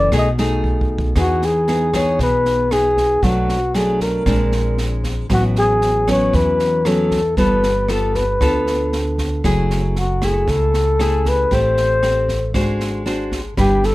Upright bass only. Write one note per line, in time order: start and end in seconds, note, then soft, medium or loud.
0.12 1.12 B1 medium
1.16 2.15 E2 medium
2.19 3.19 B1 medium
3.22 4.22 B1 medium
4.26 5.26 A#1 medium
5.29 6.29 A1 medium
6.33 7.33 E2 medium
7.37 8.36 G1 medium
8.41 9.40 D2 medium
9.44 10.43 F#1 medium
10.47 11.47 C#2 medium
11.51 12.50 A1 medium
12.54 13.53 G#1 medium
13.57 13.95 G1 medium